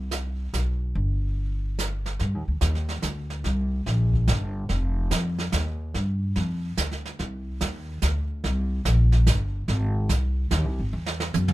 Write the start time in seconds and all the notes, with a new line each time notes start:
Already playing: C2
0.11 snare, hi-hat pedal
0.53 B1, snare, hi-hat pedal
0.95 G1, brush sweep
1.79 snare, hi-hat pedal
2.06 snare
2.19 G2, brush sweep, snare
2.34 D#2
2.48 D2
2.61 D#2, snare, hi-hat pedal
2.75 snare
2.89 snare
3.02 D2, snare, hi-hat pedal
3.30 snare
3.44 C2, brush sweep, snare
3.86 A#1, snare
4.13 kick
4.27 G1, snare, hi-hat pedal
4.69 F1, brush sweep, snare
5.11 F2, snare, hi-hat pedal
5.39 snare
5.52 D#2, snare, hi-hat pedal
5.94 G2, brush sweep, snare
6.36 F2, snare
6.77 D2, snare, hi-hat pedal
6.91 snare
7.05 snare
7.19 C2, brush sweep, snare
7.61 D#2, snare, hi-hat pedal
8.02 D2, snare, hi-hat pedal
8.44 C2, brush sweep, snare
8.85 A#1, snare, hi-hat pedal
9.12 snare
9.27 G1, snare, hi-hat pedal
9.68 G#1, brush sweep, snare
10.09 C2, snare, hi-hat pedal
10.51 D#2, snare, hi-hat pedal
10.65 C2
10.79 G#1
10.93 E2
11.06 snare
11.20 snare
11.34 F#2, hi-hat pedal, high tom
11.48 mid tom